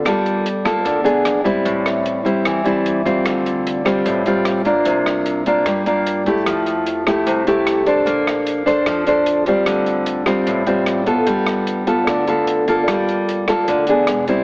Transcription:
<<
  \new Staff \with { instrumentName = "Nylon-string guitar" } { \time 4/4 \key d \minor \tempo 4 = 150 << { <bes f' a'>4 r8 <bes f' a'>4 <b d' gis'>4 <g c' e'>8~ | <g c' e'>4. <g c' e'>4 <g c' e'>4 <g c' f'>8~ | <g c' f'>4. <g c' f'>4 <g c' f'>4 <bes d' f'>8~ | <bes d' f'>4. <bes d' f'>4 <bes d' f'>4 <a e' g'>8~ |
<a e' g'>4. <a e' g'>4 <a e' g'>4 <d' a' c''>8~ | <d' a' c''>4. <d' a' c''>4 <d' a' c''>4 <g c' f'>8~ | <g c' f'>4. <g c' f'>4 <g c' f'>4 <b f' a'>8~ | <b f' a'>4. <b f' a'>4 <b f' a'>4 <bes f' a'>8~ |
<bes f' a'>4. <bes f' a'>4 <b d' gis'>4 <g c' e'>8 | } \\ { g2 d4 r4 | a,2 e2 | d2 a,2 | c2 g2 |
f2 c2 | bes2 f2 | d2 a,2 | g2 d2 |
g2 d4 r4 | } >> }
  \new Staff \with { instrumentName = "Upright bass" } { \clef bass \time 4/4 \key d \minor g,,2 d,4 fis,,8 gis,,8 | a,,2 e,2 | d,2 a,,2 | c,2 g,2 |
f,2 c,2 | bes,,2 f,2 | d,2 a,,2 | g,,2 d,2 |
g,,2 d,4 e,,4 | }
  \new DrumStaff \with { instrumentName = "Drums" } \drummode { \time 4/4 <hh bd ss>8 hh8 hh8 <hh bd ss>8 <hh bd>8 hh8 <hh ss>8 <hh bd>8 | <hh bd>8 <hh ss>8 hh8 hh8 <hh bd ss>8 hh8 hh8 <hh bd>8 | <hh bd ss>8 hh8 hh8 <hh ss>8 <hh bd>8 hh8 <hh ss>8 <hh bd>8 | <hh bd>8 <hh ss>8 hh8 hh8 <hh bd ss>8 hh8 hh8 <hh bd>8 |
<hh bd ss>8 hh8 hh8 <hh bd ss>8 <hh bd>8 hh8 <hh ss>8 <hh bd>8 | <hh bd>8 <hh ss>8 hh8 hh8 <hh bd ss>8 hh8 hh8 <hh bd>8 | <hh bd ss>8 hh8 hh8 <hh ss>8 <hh bd>8 hh8 <hh ss>8 <hh bd>8 | <hh bd>8 <hh ss>8 hh8 hh8 <hh bd ss>8 hh8 hh8 <hh bd>8 |
<hh bd ss>8 hh8 hh8 <hh bd ss>8 <hh bd>8 hh8 <hh ss>8 <hh bd>8 | }
>>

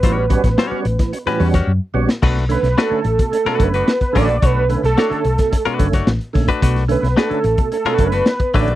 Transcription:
<<
  \new Staff \with { instrumentName = "Analog synth lead" } { \time 4/4 \key b \minor \tempo 4 = 109 b'2. r4 | r8 b'8 a'4 a'8 b'4 d''8 | b'8. a'4. r4. r16 | r8 b'8 a'4 a'8 b'4 d''8 | }
  \new Staff \with { instrumentName = "Clean electric guitar" } { \time 4/4 \key b \minor <g cis' fis' cis''>8 r8 <g cis' fis' cis''>8 r8. <g cis' fis' b'>8 <g cis' fis' cis''>16 r4 | <a d' fis' b'>8 r8 <a d' fis' b'>8 r8. <a d' fis' b'>8 <a d' fis' b'>16 r8 <a d' fis' b'>8 | <a d' fis' cis''>8 r8 <a d' fis' cis''>8 r8. <a d' fis' b'>8 <a d' fis' cis''>16 r8. <a d' fis' b'>16 | <a d' fis' b'>8 r8 <a d' fis' b'>8 r8. <a d' fis' b'>8 <a d' fis' b'>16 r8 <a d' fis' b'>8 | }
  \new Staff \with { instrumentName = "Tonewheel organ" } { \time 4/4 \key b \minor <a, e>16 r16 <g b cis' fis'>16 <cis' fis'>16 r16 <g b cis' fis'>16 r16 <a, e>16 <cis' fis'>16 <a, e>16 <g b cis' fis'>16 r8. <g b cis' fis'>16 r16 | b,16 r16 <d a cis'>16 <a cis'>16 r16 <d a cis'>16 r16 b,16 <a cis'>16 b,16 <d a cis'>16 r8. <d a cis'>16 r16 | b,16 r16 <d a cis'>16 <a cis'>16 r16 <d a cis'>16 r16 b,16 <a cis'>16 b,16 <d a cis'>16 r8. <d a cis'>16 r16 | b,16 r16 <d a cis'>16 <a cis'>16 r16 <d a cis'>16 r16 b,16 <a cis'>16 b,16 <d a cis'>16 r8. <d a cis'>16 r16 | }
  \new Staff \with { instrumentName = "Fingered electric bass" } { \clef bass \time 4/4 \key b \minor a,,8. a,,16 r8 a,,16 r8. e,8 fis,16 r16 ais,,16 r16 | b,,8. b,,16 r8 a,,16 r8. fis,,8 r8 a,,16 ais,,16 | b,,8. b,,16 r8 b,,16 r8. fis,,8 a,,16 r16 ais,,16 r16 | b,,8. b,,16 r8 a,,16 r8. fis,,8 r8 a,,16 ais,,16 | }
  \new DrumStaff \with { instrumentName = "Drums" } \drummode { \time 4/4 <hh bd>8 <hh bd>16 <hh bd sn>16 sn8 hh16 <hh bd sn>16 hh16 <hh sn>16 hho16 <hh bd sn>16 r8. sn16 | <cymc bd>16 sn16 hh16 <hh sn>16 sn8 hh16 <hh bd>16 hh16 sn16 <hh bd>16 hh16 sn16 <hh bd>16 <hho bd>16 hh16 | <hh bd>8 hh16 <hh sn>16 sn16 hh16 hh16 <hh bd sn>16 <hh bd>16 hh16 <hh bd>16 <hh bd sn>16 sn16 hh16 <hho bd sn>16 <hh bd>16 | <hh bd>16 <hh sn>16 hh16 <hh sn>16 sn16 hh16 hh16 <hh bd>16 hh16 <hh sn>16 <hh bd>16 hh16 sn16 <hh bd>16 <hho bd>16 hh16 | }
>>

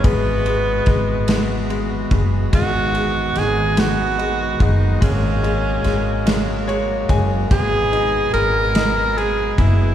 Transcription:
<<
  \new Staff \with { instrumentName = "Tenor saxophone" } { \time 6/8 \key gis \minor \tempo 4. = 48 b2 r4 | fis'4 gis'8 fis'4 dis'8 | cis'2 r4 | gis'4 ais'4 gis'8 e'8 | }
  \new Staff \with { instrumentName = "Pipe organ" } { \time 6/8 \key gis \minor fis'2.~ | fis'2.~ | fis'2. | gis'2. | }
  \new Staff \with { instrumentName = "Pipe organ" } { \clef bass \time 6/8 \key gis \minor <e b>2. | <dis b>2. | <cis ais>2. | <b, b>2. | }
  \new Staff \with { instrumentName = "Grand piano" } { \clef bass \time 6/8 \key gis \minor gis8 gis8 gis8 gis8 gis8 gis8 | gis8 gis8 gis8 gis8 gis8 gis8 | gis8 gis8 gis8 gis8 <gis cis''>8 <gis gis''>8 | gis8 dis'8 gis8 dis''8 gis8 b8 | }
  \new Staff \with { instrumentName = "Upright bass" } { \clef bass \time 6/8 \key gis \minor gis,,4 gis,,4. fis,,8 | gis,,4 gis,,4. fis,,8 | gis,,4 gis,,4. fis,,8 | gis,,4 gis,,4. fis,,8 | }
  \new DrumStaff \with { instrumentName = "Drums" } \drummode { \time 6/8 <bd cymr>8 cymr8 <bd cymr sn>8 <cymr sn>8 cymr8 <bd cymr>8 | <bd cymr>8 cymr8 <cymr sn>8 <cymr sn>8 cymr8 <bd cymr>8 | <bd cymr>8 cymr8 <cymr sn>8 <cymr sn>8 cymr8 <bd cymr>8 | <bd cymr>8 cymr8 cymr8 <cymr sn>8 cymr8 <bd cymr>8 | }
>>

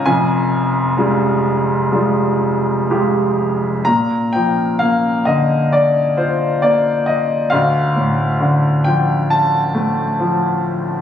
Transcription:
<<
  \new Staff \with { instrumentName = "Grand piano" } { \time 4/4 \key bes \major \tempo 4 = 66 aes''2. r4 | bes''8 g''8 f''8 ees''8 d''8 c''8 d''8 ees''8 | f''4. g''8 a''4. r8 | }
  \new Staff \with { instrumentName = "Grand piano" } { \clef bass \time 4/4 \key bes \major <f,, f,>4 <g aes f'>4 <g aes f'>4 <aes f' g'>4 | bes,8 f8 bes8 d4 f'8 bes4 | d,8 a,8 d8 f4 a8 f4 | }
>>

